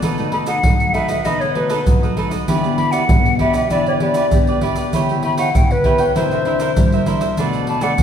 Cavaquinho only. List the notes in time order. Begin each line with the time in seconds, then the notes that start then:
0.03 D#4 A4 B4 D#5
0.32 D#4 A4 B4 D#5
0.47 D#4 A4 B4 D#5
0.94 D#4 A4 B4 D#5
1.08 A4 B4 D#5
1.25 D#4 A4 B4 D#5
1.41 A4 B4 D#5
1.55 D#4 A4 B4 D#5
1.70 D#4 A4 B4 D#5
2.02 A4 B4 D#5
2.17 D#4 A4 B4 D#5
2.31 A4 B4 D#5
2.48 E4 G4 B4 D5
2.78 E4 G4 B4 D5
2.92 E4 G4 B4 D5
3.39 E4 G4 B4 D5
3.54 G4 B4 D5
3.71 E4 G4 B4 D5
3.87 G4 B4 D5
4.01 E4 G4 B4 D5
4.16 E4 G4 B4 D5
4.48 G4 B4 D5
4.62 E4 G4 B4 D5
4.77 G4 B4 D5
4.94 E4 B4 C#5 G5
5.24 E4 B4 C#5 G5
5.38 E4 B4 C#5 G5
5.85 E4 B4 C#5 G5
5.99 B4 C#5 G5
6.16 E4 A#4 C5 E5
6.32 A#4 C5 E5
6.46 E4 A#4 C5 E5
6.61 E4 A#4 C5 E5
6.94 A#4 C5 E5
7.07 E4 A#4 C5 E5
7.21 A#4 C5 E5
7.38 D4 A4 B4 D5
7.68 D4 A4 B4 D5
7.82 D4 A4 B4 D5